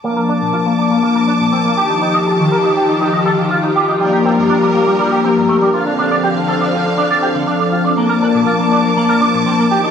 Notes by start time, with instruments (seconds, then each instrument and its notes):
0.03 analog synth pad F3 A#3 D4 A5, clean electric guitar A#3, string section A5 D6
0.16 clean electric guitar A#4
0.29 clean electric guitar D4
0.41 clean electric guitar A#2
0.53 clean electric guitar F4
0.66 clean electric guitar A#3
0.78 clean electric guitar D4
0.91 clean electric guitar A#3
1.03 clean electric guitar A#3
1.15 clean electric guitar A#4
1.27 clean electric guitar D4
1.40 clean electric guitar A#2
1.52 clean electric guitar C4
1.65 clean electric guitar A#3
1.76 string section D#3 F4 G4, analog synth pad F3 D#4 G4, clean electric guitar G4
1.90 clean electric guitar D#4
2.02 clean electric guitar D#4
2.14 clean electric guitar D#5
2.27 clean electric guitar A4
2.40 clean electric guitar D#3
2.52 clean electric guitar A#4
2.64 clean electric guitar D#4
2.77 clean electric guitar G4
2.89 clean electric guitar D#4
3.01 clean electric guitar D#4
3.13 clean electric guitar D#5
3.26 clean electric guitar A4
3.38 clean electric guitar D#3
3.51 clean electric guitar F4
3.64 clean electric guitar D#4
3.76 clean electric guitar G4
3.89 clean electric guitar D#4
3.99 analog synth pad F3 A#3 D4 G4, clean electric guitar G3, string section G3 A#4
4.13 clean electric guitar G4
4.25 clean electric guitar C4
4.38 clean electric guitar G2
4.50 clean electric guitar D4
4.62 clean electric guitar G3
4.75 clean electric guitar A#3
4.87 clean electric guitar G3
4.99 clean electric guitar G3
5.12 clean electric guitar G4
5.24 clean electric guitar C4
5.36 clean electric guitar G2
5.49 clean electric guitar A3
5.62 clean electric guitar G3
5.72 string section D3 C4 F5, analog synth pad F3 C4 D4 A4, clean electric guitar F4
5.86 clean electric guitar D4
5.99 clean electric guitar D4
6.11 clean electric guitar D5
6.24 clean electric guitar G4
6.36 clean electric guitar D3
6.48 clean electric guitar A4
6.61 clean electric guitar D4
6.73 clean electric guitar F4
6.86 clean electric guitar D4
6.98 clean electric guitar D4
7.11 clean electric guitar D5
7.22 clean electric guitar G4
7.34 clean electric guitar D3
7.47 clean electric guitar D4
7.60 clean electric guitar D4
7.72 clean electric guitar F4
7.85 clean electric guitar D4
7.96 analog synth pad F3 A#3 D4 A5, clean electric guitar A#3, string section A5 D6
8.09 clean electric guitar A#4
8.22 clean electric guitar D4
8.34 clean electric guitar A#2
8.47 clean electric guitar F4
8.59 clean electric guitar A#3
8.71 clean electric guitar D4
8.84 clean electric guitar A#3
8.97 clean electric guitar A#3
9.09 clean electric guitar A#4
9.21 clean electric guitar D4
9.34 clean electric guitar A#2
9.46 clean electric guitar C4
9.59 clean electric guitar A#3
9.70 string section D#3 F4 G4, analog synth pad F3 D#4 G4, clean electric guitar G4
9.84 clean electric guitar D#4